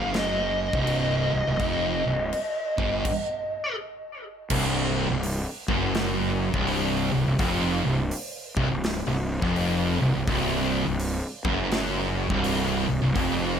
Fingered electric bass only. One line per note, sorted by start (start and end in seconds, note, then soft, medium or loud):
0.00 0.70 F#1 loud
0.73 1.29 C1 medium
1.33 1.46 C1 medium
1.47 1.59 C1 medium
1.60 2.03 F1 medium
2.06 2.31 C1 medium
2.78 3.04 G1 medium
4.50 5.06 C1 medium
5.10 5.44 C1 medium
5.68 6.50 F#1 loud
6.54 7.09 C1 medium
7.14 7.27 C1 medium
7.27 7.38 C1 medium
7.39 7.82 F1 loud
7.86 8.11 C1 medium
8.56 8.69 C1 loud
8.71 9.04 C1 medium
9.06 9.40 C1 medium
9.43 9.98 F1 loud
10.02 10.14 C1 medium
10.16 10.27 C1 medium
10.28 10.83 C1 loud
10.87 11.21 C1 medium
11.45 12.26 F#1 loud
12.30 12.85 C1 medium
12.90 13.02 C1 medium
13.03 13.15 C1 medium
13.16 13.58 F1 loud